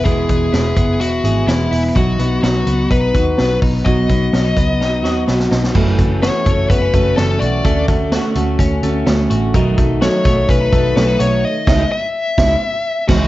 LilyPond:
<<
  \new Staff \with { instrumentName = "Lead electric guitar" } { \time 4/4 \key b \mixolydian \tempo 4 = 126 gis'4. gis'8 fis'4 e'8. r16 | fis'4 fis'4 b'4. r8 | dis''2. r4 | r4 cis''4 b'4 a'8 d''8~ |
d''8 r2. r8 | r4 cis''4 b'4. cis''8 | dis''4 e''2~ e''8 fis'8 | }
  \new Staff \with { instrumentName = "Clean electric guitar" } { \time 4/4 \key b \mixolydian <e b e' gis'>8 b8 e'8 b8 e'8 gis'8 b8 e'8 | fis8 b8 dis'8 b8 dis'8 fis'8 b8 dis'8 | fis8 b8 cis'16 dis'16 b8 dis'8 fis'8 b8 dis'8 | e8 a8 fis'8 a8 b16 cis'16 a8 cis'8 fis'8 |
a8 a8 fis'8 a8 cis'8 a8 cis'8 fis'8 | dis8 a8 fis'8 a8 cis'16 dis'16 a8 cis'16 dis'16 fis'8 | r1 | }
  \new Staff \with { instrumentName = "Steel-string acoustic guitar" } { \time 4/4 \key b \mixolydian <e, b, e gis b e'>4 <e gis b e'>4. <e gis b e'>8 <e gis b e'>8 <e gis b e'>8 | <b, fis b dis' fis'>8 <b dis' fis'>8 <fis b dis' fis'>4. <b dis' fis'>8 <fis b dis' fis'>4 | <b, fis b dis' fis'>8 <b dis' fis'>8 <fis b dis' fis'>4. <b dis' fis'>8 <fis b dis' fis'>8 <b dis' fis'>8 | <fis, cis e a cis' fis'>8 <e a cis' fis'>8 <e a cis' fis'>8 <e a cis' fis'>4 <e a cis' fis'>8 <e a cis' fis'>4 |
<d a cis' fis'>8 <a cis' fis'>8 <d a cis' fis'>8 <a cis' fis'>4 <a cis' fis'>8 <d a cis' fis'>4 | <b, fis a dis' fis'>8 <a dis' fis'>8 <fis a dis' fis'>8 <a dis' fis'>4 <a dis' fis'>8 <fis a dis' fis'>4 | r8 <gis dis' e'>8 r4 <gis dis' e'>8 r4 <e gis dis' e'>8 | }
  \new Staff \with { instrumentName = "Picked electric bass" } { \clef bass \time 4/4 \key b \mixolydian e,,8 e,,8 e,,8 fis,,8 e,,8 gis,,8 e,,8 e,,8 | b,,8 b,,8 b,,8 cis,8 b,,8 dis,8 b,,8 b,,8 | b,,8 b,,8 b,,8 cis,8 b,,8 dis,8 b,,8 b,,8 | fis,,8 fis,,8. r16 fis,,8 fis,,8 fis,,8 fis,,8 b,,8 |
d,8 d,8. r16 d,8 d,8 d,8 d,8 a,,8 | b,,8 b,,8. r16 b,,8 b,,8 b,,8 b,,8 b,,8 | r8 cis,8 r4 cis,8 r4 cis,8 | }
  \new DrumStaff \with { instrumentName = "Drums" } \drummode { \time 4/4 <hh bd>8 <hh bd>8 <hh sn>8 <hh bd>8 hh8 hh8 <hh sn>8 hho8 | <hh bd>8 hh8 <hh sn>8 hh8 <hh bd>8 <hh bd>8 <hh sn>8 <hho bd>8 | <hh bd>8 <hh bd>8 <hh sn>8 <hh bd>8 sn8 sn8 sn16 sn16 sn16 sn16 | <cymc bd>8 <hh bd>8 <hh sn>8 <hh bd>8 <hh bd>8 <hh bd>8 <hh sn>8 hh8 |
<hh bd>8 <hh bd>8 <hh sn>8 hh8 <hh bd>8 hh8 <hh sn>8 hh8 | <hh bd>8 <hh bd>8 <hh sn>8 <hh bd>8 <hh bd>8 <hh bd>8 <hh sn>8 hh8 | r8 <cymc bd sn>8 r4 <bd sn>4 r8 <cymc bd sn>8 | }
>>